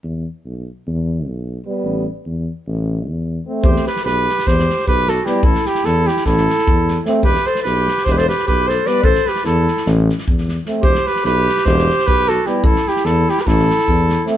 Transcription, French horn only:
\new Staff \with { instrumentName = "French horn" } { \time 9/8 \key e \minor \tempo 4. = 100 r1 b8~ | b8 r2. r8 c'8~ | c'8 r2. r8 b8~ | b8 r2. r8 c'8~ |
c'8 r2. r8 b8~ | b8 r2. r8 c'8~ | c'8 r2. r8 b8~ | b8 r2. r8 c'8 | }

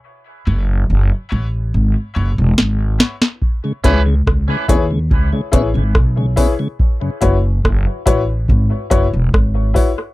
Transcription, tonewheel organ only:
<<
  \new Staff \with { instrumentName = "Tonewheel organ" } { \time 4/4 \key fis \dorian \tempo 4 = 71 r1 | r8 <b cis' e'>8 r8 <b cis' e'>8 r8 <b cis' e'>8 r8 <b cis' e'>8 | r1 | }
  \new Staff \with { instrumentName = "Tonewheel organ" } { \clef bass \time 4/4 \key fis \dorian r1 | r16 <cis gis>16 r16 <cis gis>16 r16 <cis gis>16 r16 <cis gis>16 r16 <cis gis>16 r16 <cis gis>16 r16 <cis gis>16 r16 <cis gis>16 | r16 <fis, cis>16 r2. r8 | }
>>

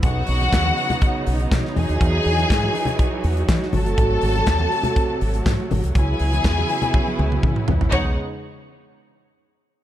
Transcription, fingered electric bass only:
\new Staff \with { instrumentName = "Fingered electric bass" } { \clef bass \time 4/4 \key b \major \tempo 4 = 122 b,,8 b,,8 dis,8 r4 b,,8 b,16 r16 e,16 dis,16 | e,8 e,8 gis,8 r4 e,8 e16 r16 gis,,16 fis,,16 | gis,,8 gis,,8 dis,8 r4 gis,,8 gis,16 r16 gis,,16 bis,,16 | cis,8 cis,8 e,8 r4 cis,8 cis16 r16 cis,16 ais,,16 |
b,,8 r2. r8 | }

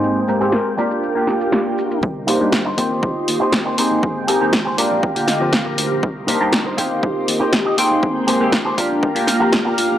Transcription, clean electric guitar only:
\new Staff \with { instrumentName = "Clean electric guitar" } { \time 4/4 \key c \minor \tempo 4 = 120 << { r1 | r1 | r4. bes''8 g''8 ees''8 f''8 c''8 | r1 |
r1 | } \\ { <g' aes' c''>16 r8 <g' aes' c''>8 r16 <bes f' g' bes'>8. r4. r16 | r8 <ees' bes' c''>8 r16 <ees' bes' c''>16 <ees' g' c''>4 r16 <ees' g' c''>16 r16 <ees' g' c''>16 <g' aes' c''>8~ | <g' aes' c''>16 r16 <g' aes' bes'>8 r16 <g' aes' c''>16 <f' g' bes'>4 r16 <f' g' c''>16 r16 <f' g' bes'>8. | r8 <ees' bes' c''>8 r16 <ees' bes' c''>16 <ees' g' c''>4 r16 <ees' g' c''>16 r16 <ees' g' ees''>16 <g' aes' c''>8~ |
<g' aes' c''>16 r16 <g' aes' c''>8 r16 <g' aes' c''>16 <f' g' bes'>4 r16 <f' g' bes'>16 r16 <f' g' bes'>8. | } >> }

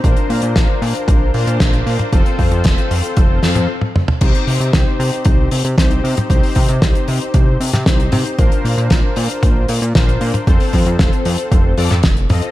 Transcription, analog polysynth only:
\new Staff \with { instrumentName = "Analog polysynth" } { \time 4/4 \key c \dorian \tempo 4 = 115 <d' f' bes' c''>2~ <d' f' bes' c''>8 <d' f' bes' c''>4. | <c' f' a' c''>2~ <c' f' a' c''>8 <c' f' a' c''>8 r4 | <c' ees' g' c''>2~ <c' ees' g' c''>8 r8 <c' ees' g' c''>4 | <c' ees' g' c''>2~ <c' ees' g' c''>8 r8 <c' ees' g' c''>4 |
<d' f' bes' c''>2~ <d' f' bes' c''>8 r8 <d' f' bes' c''>4 | <c' f' a' c''>2~ <c' f' a' c''>8 <c' f' a' d''>8 r8 <c' f' a' ees''>8 | }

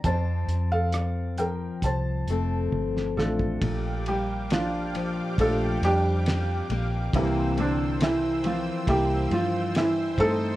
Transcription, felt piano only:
\new Staff \with { instrumentName = "Felt piano" } { \time 4/4 \key bes \major \tempo 4 = 68 <c'' a''>8. <a' f''>8. <bes' g''>8 <c'' a''>4. <a d' f' a'>8~ | <a d' f' a'>8 <g g'>8 <f d' f'>4 <a d' f' a'>8 <g d' g'>4. | <e g bes e'>8 <d d'>8 <e e'>8 <f f'>8 <g bes e' g'>8 <f f'>8 <e e'>8 <a c' ees' a'>8 | }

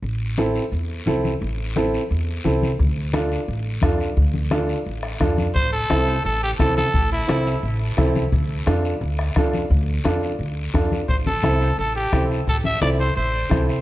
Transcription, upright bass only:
\new Staff \with { instrumentName = "Upright bass" } { \clef bass \time 4/4 \key a \minor \tempo 4 = 174 a,,2 e,4 c,4 | a,,2 e,4 c,4 | d,2 a,,4 f,4 | d,2 a,,4 f,4 |
a,,4 c,4 a,,4 c,4 | a,,4 c,4 a,,4 c,4 | d,4 f,4 d,4 f,4 | d,4 f,4 d,4 f,4 |
a,,4 c,4 a,,4 c,4 | a,,4 c,4 a,,4 c,4 | }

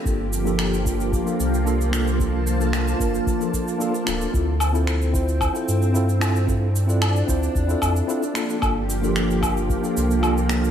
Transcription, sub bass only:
\new Staff \with { instrumentName = "Sub bass" } { \clef bass \time 4/4 \key g \dorian \tempo 4 = 112 g,,2 r8 c,4.~ | c,4. g,,8 r4. d,,8 | d,2 r8 g,4.~ | g,4. d,8 e,8 f,8 r4 |
g,,2 r8 c,4. | }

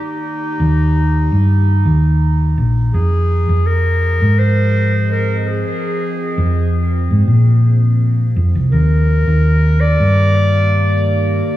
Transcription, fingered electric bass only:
\new Staff \with { instrumentName = "Fingered electric bass" } { \clef bass \time 4/4 \key f \dorian \tempo 4 = 83 r8. ees,4 g,8. ees,4 bes,,8 | f,8. f,4 aes,2 r16 | r8. f,4 aes,16 bes,4. f,16 c,16 | ees,8. ees,4 g,2 r16 | }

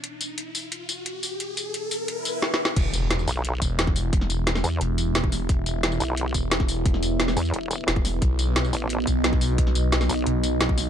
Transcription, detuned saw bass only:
\new Staff \with { instrumentName = "Detuned saw bass" } { \clef bass \time 4/4 \key e \minor \tempo 4 = 176 r1 | r1 | e,,4. r4 e,,4. | e,,4. r8 e,,2 |
e,,4. r4 e,,4. | e,,4. r4. e,,4 | b,,4. r4 b,,4. | b,,4. r8 b,,2 | }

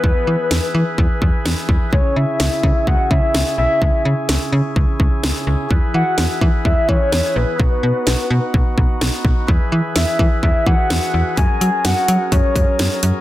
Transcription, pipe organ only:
\new Staff \with { instrumentName = "Pipe organ" } { \time 4/4 \key e \lydian \tempo 4 = 127 << { <e e' b'>1 | <cis cis'>1~ | <cis cis'>1 | <e b'>1 |
<b fis'>1 | <e e' b'>1 | <fis cis' ais'>1 | } \\ { gis'1~ | gis'1~ | gis'1~ | gis'1 |
dis'1 | gis'1~ | gis'1 | } >> }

